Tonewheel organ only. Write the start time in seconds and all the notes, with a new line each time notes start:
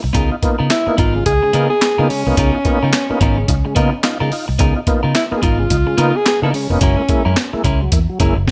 0.15 C#3 G#3
0.32 D#4 F4
0.42 A#3 B3 D#4 F4
0.88 A#3 B3 D#4 F4
1.16 C#3 G#3
1.27 D#4 F4
1.43 C#3 G#3
1.54 A#3 B3 D#4 F4
1.99 A#3 B3 D#4 F4
2.10 C#3 G#3
2.27 A#3 B3 D#4 F4
2.38 C#3 G#3
2.54 D#4 F4
2.65 A#3 B3 D#4 F4
3.10 A#3 B3 D#4 F4
3.38 C#3 G#3
3.49 D#4 F4
3.66 C#3 G#3
3.76 A#3 B3 D#4 F4
4.04 D#4 F4
4.22 C#3 G#3
4.32 D#4 F4
4.60 C#3 G#3
4.76 D#4 F4
4.87 A#3 B3 D#4 F4
5.31 A#3 B3 D#4 F4
5.59 C#3 G#3
5.70 D#4 F4
5.87 C#3 G#3
5.98 A#3 B3 D#4 F4
6.42 A#3 B3 D#4 F4
6.53 C#3 G#3
6.70 A#3 B3 D#4 F4
6.81 F#3
6.98 A#3 E4
7.09 G#3 A#3 E4
7.53 G#3 A#3 E4
7.82 F#3
7.93 A#3 E4
8.10 F#3
8.20 G#3 A#3 E4